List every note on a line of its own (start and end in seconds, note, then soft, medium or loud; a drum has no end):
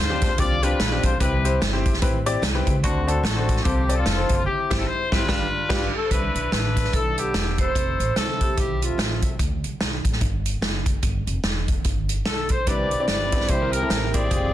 0.00 0.32 D2 medium
0.00 0.18 G2 medium
0.00 0.35 D4 medium
0.00 0.37 F4 medium
0.00 0.36 C5 loud
0.10 0.29 C4 medium
0.10 0.29 D4 medium
0.10 0.29 F4 medium
0.10 0.29 G4 medium
0.21 kick medium
0.21 snare soft
0.21 closed hi-hat medium
0.38 0.73 C2 medium
0.38 0.53 C4 medium
0.38 0.53 D4 medium
0.38 0.53 F4 medium
0.38 0.61 F4 medium
0.38 0.53 G4 medium
0.38 0.63 D5 loud
0.38 kick medium
0.38 closed hi-hat medium
0.62 0.78 C4 medium
0.62 0.78 D4 medium
0.62 1.17 D4 medium
0.62 1.16 F4 medium
0.62 0.78 F4 medium
0.62 0.78 G4 medium
0.62 1.04 B4 loud
0.62 closed hi-hat medium
0.80 1.00 A#1 medium
0.80 snare loud
0.80 closed hi-hat medium
0.92 1.11 C4 medium
0.92 1.11 D4 medium
0.92 1.11 F4 medium
0.92 1.11 G4 medium
1.03 1.18 B1 medium
1.03 1.20 C5 medium
1.03 kick medium
1.03 closed hi-hat medium
1.20 1.55 C2 loud
1.20 1.81 C3 medium
1.20 1.35 C4 medium
1.20 1.98 E4 medium
1.20 1.35 E4 medium
1.20 1.98 G4 medium
1.20 1.35 G4 medium
1.20 1.58 B4 medium
1.20 1.35 B4 medium
1.20 kick medium
1.20 closed hi-hat loud
1.45 1.60 C4 medium
1.45 1.60 E4 medium
1.45 1.60 G4 medium
1.45 1.60 C5 medium
1.45 closed hi-hat soft
1.61 1.96 G1 medium
1.61 snare loud
1.61 closed hi-hat medium
1.73 1.92 C4 medium
1.73 1.92 E4 medium
1.73 1.92 G4 medium
1.73 1.92 C5 loud
1.85 kick medium
1.85 closed hi-hat medium
1.93 snare soft
2.02 2.37 A1 medium
2.02 2.17 C4 medium
2.02 2.17 E4 medium
2.02 2.17 G4 medium
2.02 2.17 B4 medium
2.02 kick loud
2.02 closed hi-hat medium
2.26 2.42 C4 medium
2.26 2.42 E4 medium
2.26 2.42 G4 medium
2.26 2.42 D5 loud
2.26 closed hi-hat medium
2.42 2.63 C2 loud
2.42 snare loud
2.42 closed hi-hat medium
2.55 2.74 C4 medium
2.55 2.74 E4 medium
2.55 2.74 G4 medium
2.55 2.74 B4 medium
2.67 2.81 C#2 loud
2.67 kick medium
2.67 closed hi-hat medium
2.84 3.19 D2 loud
2.84 3.45 D3 medium
2.84 3.62 A3 medium
2.84 3.23 C4 medium
2.84 2.98 D4 medium
2.84 3.06 F#4 medium
2.84 2.99 F#4 medium
2.84 2.99 A4 medium
2.84 2.99 C5 medium
2.84 kick medium
2.84 closed hi-hat loud
3.07 3.23 D4 medium
3.07 3.23 F#4 medium
3.07 3.22 A4 medium
3.07 3.23 A4 medium
3.07 3.23 C5 medium
3.07 closed hi-hat soft
3.23 3.59 A1 loud
3.23 3.63 C4 medium
3.23 3.63 F#4 medium
3.23 3.62 A4 medium
3.23 snare loud
3.23 closed hi-hat medium
3.36 3.56 D4 medium
3.36 3.56 F#4 medium
3.36 3.56 A4 medium
3.36 3.56 C5 medium
3.49 kick medium
3.49 closed hi-hat medium
3.56 snare soft
3.63 4.00 C2 loud
3.63 4.26 C3 medium
3.63 3.96 C4 medium
3.63 3.80 C4 medium
3.63 3.80 F4 medium
3.63 3.97 G4 loud
3.63 3.80 A4 medium
3.63 3.80 C5 medium
3.63 kick loud
3.63 closed hi-hat medium
3.89 4.05 C4 medium
3.89 4.05 F4 medium
3.89 4.05 A4 medium
3.89 4.05 D5 medium
3.89 closed hi-hat medium
3.94 4.43 C4 medium
3.94 4.34 F4 medium
3.94 4.37 A4 loud
4.06 4.27 F1 medium
4.06 snare loud
4.06 closed hi-hat medium
4.17 4.37 C4 medium
4.17 4.37 F4 medium
4.17 4.37 A4 medium
4.17 4.37 C5 medium
4.29 4.44 F#1 medium
4.29 kick medium
4.29 closed hi-hat medium
4.35 4.46 F4 medium
4.45 5.25 C4 medium
4.45 5.25 E4 medium
4.45 4.76 G4 loud
4.70 4.83 G1 loud
4.70 4.82 C4 medium
4.70 4.82 E4 loud
4.70 4.83 G4 loud
4.70 kick loud
4.70 snare medium
4.70 crash medium
4.78 4.87 A4 loud
4.87 5.12 C5 loud
5.12 5.24 G1 loud
5.12 5.24 C4 medium
5.12 5.91 D4 medium
5.12 5.24 E4 medium
5.12 5.91 F4 medium
5.12 5.24 G4 medium
5.12 5.90 B4 loud
5.12 5.24 C5 medium
5.12 kick medium
5.12 snare medium
5.28 5.45 G1 medium
5.28 5.45 G2 medium
5.28 5.45 D4 medium
5.28 5.46 D4 medium
5.28 5.45 F4 medium
5.28 5.46 F4 medium
5.28 5.45 G4 loud
5.28 5.45 B4 medium
5.28 kick loud
5.28 snare medium
5.69 5.87 G1 loud
5.69 5.86 D4 medium
5.69 5.87 D4 medium
5.69 5.86 F4 loud
5.69 5.87 F4 medium
5.69 5.86 G4 medium
5.69 5.95 G4 medium
5.69 5.93 G4 medium
5.69 5.86 B4 medium
5.69 kick loud
5.69 snare loud
5.69 crash medium
5.96 6.00 A4 medium
5.96 6.12 A4 medium
6.05 6.11 C5 medium
6.11 6.32 C2 medium
6.11 6.52 D4 medium
6.11 6.52 E4 medium
6.11 6.51 B4 medium
6.11 6.52 B4 medium
6.11 kick medium
6.11 closed hi-hat medium
6.35 6.49 B1 medium
6.35 closed hi-hat soft
6.52 6.87 A1 loud
6.52 6.93 D4 medium
6.52 6.93 E4 medium
6.52 6.90 B4 loud
6.52 6.95 B4 medium
6.52 snare loud
6.52 closed hi-hat medium
6.77 kick medium
6.77 snare soft
6.77 closed hi-hat medium
6.84 snare soft
6.93 7.36 B1 medium
6.93 7.72 D4 medium
6.93 7.17 E4 medium
6.93 7.18 A4 medium
6.93 7.18 A4 loud
6.93 kick loud
6.93 closed hi-hat medium
7.18 7.71 B3 medium
7.18 7.58 E4 medium
7.18 7.58 G4 loud
7.18 7.61 G4 medium
7.18 closed hi-hat medium
7.34 7.69 E1 medium
7.34 snare loud
7.34 closed hi-hat medium
7.58 8.16 E4 medium
7.58 8.16 A4 medium
7.58 8.12 C5 loud
7.58 8.18 C5 loud
7.58 kick medium
7.58 closed hi-hat medium
7.75 7.96 F1 medium
7.75 kick medium
7.75 closed hi-hat loud
7.99 8.14 A1 medium
7.99 closed hi-hat soft
8.16 8.51 C2 medium
8.16 8.57 C4 medium
8.16 8.95 E4 medium
8.16 8.55 A4 loud
8.16 8.42 A4 medium
8.16 snare loud
8.16 closed hi-hat medium
8.41 8.83 G4 medium
8.41 kick medium
8.41 closed hi-hat medium
8.57 8.92 B1 medium
8.57 8.81 C4 medium
8.57 8.82 G4 medium
8.57 9.36 E5 medium
8.57 kick loud
8.57 closed hi-hat medium
8.82 9.36 A3 medium
8.82 9.36 C4 medium
8.82 9.20 F4 medium
8.82 9.23 F4 medium
8.82 closed hi-hat medium
8.98 9.23 A1 medium
8.98 snare loud
8.98 closed hi-hat medium
9.22 9.37 B1 medium
9.22 kick medium
9.22 closed hi-hat medium
9.39 9.60 D2 medium
9.39 kick loud
9.39 closed hi-hat medium
9.64 9.78 C2 medium
9.64 closed hi-hat soft
9.80 10.01 B1 medium
9.80 snare loud
9.80 closed hi-hat medium
10.05 10.19 A1 medium
10.05 kick medium
10.05 closed hi-hat medium
10.13 snare soft
10.21 10.56 G1 medium
10.21 kick loud
10.21 closed hi-hat medium
10.46 closed hi-hat medium
10.61 10.97 F#1 medium
10.61 snare loud
10.61 closed hi-hat medium
10.86 kick medium
10.86 closed hi-hat medium
11.03 11.23 G1 loud
11.03 kick medium
11.03 closed hi-hat medium
11.27 11.41 F1 medium
11.27 closed hi-hat soft
11.44 11.79 E1 medium
11.44 snare loud
11.44 closed hi-hat medium
11.68 kick medium
11.68 closed hi-hat medium
11.84 12.20 G1 medium
11.84 kick medium
11.84 closed hi-hat medium
12.09 closed hi-hat medium
12.25 12.61 B1 medium
12.25 12.48 A4 medium
12.25 12.52 A4 medium
12.25 snare loud
12.25 closed hi-hat medium
12.49 12.67 C5 medium
12.49 12.59 C5 medium
12.49 kick medium
12.49 closed hi-hat medium
12.66 12.88 C2 medium
12.66 13.28 C3 medium
12.66 13.47 B3 medium
12.66 13.47 C4 medium
12.66 12.89 C4 medium
12.66 13.48 D4 medium
12.66 12.89 D4 medium
12.66 14.29 E4 medium
12.66 12.89 E4 medium
12.66 13.07 G4 medium
12.66 12.89 B4 medium
12.66 13.07 B4 medium
12.66 13.07 D5 loud
12.66 13.09 D5 loud
12.66 kick medium
12.66 closed hi-hat loud
12.91 13.06 B1 medium
12.91 closed hi-hat soft
13.00 13.18 C4 medium
13.00 13.18 D4 medium
13.00 13.18 E4 medium
13.00 13.18 D5 medium
13.08 13.43 G1 medium
13.08 13.46 G4 medium
13.08 13.46 B4 medium
13.08 13.46 D5 loud
13.08 13.51 D5 medium
13.08 snare medium
13.08 closed hi-hat medium
13.32 13.47 C4 medium
13.32 13.48 D4 medium
13.32 13.48 E4 medium
13.32 13.48 B4 medium
13.32 kick medium
13.32 snare soft
13.32 closed hi-hat medium
13.40 snare soft
13.48 13.84 C2 medium
13.48 14.10 C3 medium
13.48 14.30 A#3 medium
13.48 14.54 C4 medium
13.48 13.71 E4 medium
13.48 13.71 G4 medium
13.48 13.73 C5 loud
13.48 13.61 C5 medium
13.48 14.54 G5 medium
13.48 kick loud
13.48 closed hi-hat medium
13.61 13.75 C4 medium
13.61 13.75 E4 medium
13.61 13.75 G4 medium
13.61 13.75 A#4 medium
13.72 14.26 E4 medium
13.72 14.13 G4 medium
13.72 14.13 A#4 loud
13.72 14.16 A#4 medium
13.72 closed hi-hat medium
13.82 14.00 C4 medium
13.82 14.00 E4 medium
13.82 14.00 G4 medium
13.82 14.00 A4 medium
13.90 14.25 A1 medium
13.90 snare loud
13.90 closed hi-hat loud
14.13 14.24 C4 medium
14.13 14.25 E4 medium
14.13 14.54 G4 medium
14.13 14.24 G4 medium
14.13 14.54 G#4 medium
14.13 14.24 C5 medium
14.13 14.54 D5 loud
14.13 14.54 D5 medium
14.13 kick medium
14.13 closed hi-hat medium
14.30 14.51 F1 loud
14.30 14.54 G#3 medium
14.30 14.53 C4 medium
14.30 14.53 F4 medium
14.30 14.54 F4 medium
14.30 14.53 G4 medium
14.30 14.53 G#4 medium
14.30 kick medium
14.30 closed hi-hat medium